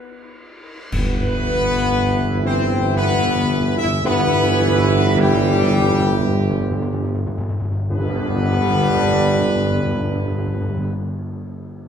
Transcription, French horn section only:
0.00 0.35 B3 medium
0.92 2.41 B3 loud
2.45 2.94 C4 loud
2.97 3.73 B3 loud
3.77 3.89 E4 loud
4.05 5.15 B3 loud
5.18 7.12 G3 loud
7.90 10.92 B3 loud

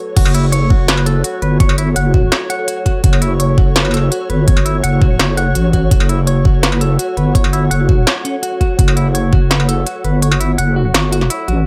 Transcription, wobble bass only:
0.17 1.23 F#1 medium
1.42 1.95 G1 loud
1.96 2.31 F#1 loud
3.04 4.10 F#1 loud
4.30 4.82 G1 loud
4.84 5.18 F#1 medium
5.20 5.54 F#1 loud
5.55 5.90 A1 loud
5.91 6.98 F#1 medium
7.17 7.70 G1 loud
7.71 8.06 F#1 medium
8.79 9.85 F#1 loud
10.04 10.57 G1 loud
10.58 10.93 F#1 medium
10.94 11.29 G1 loud
11.48 11.65 A1 loud

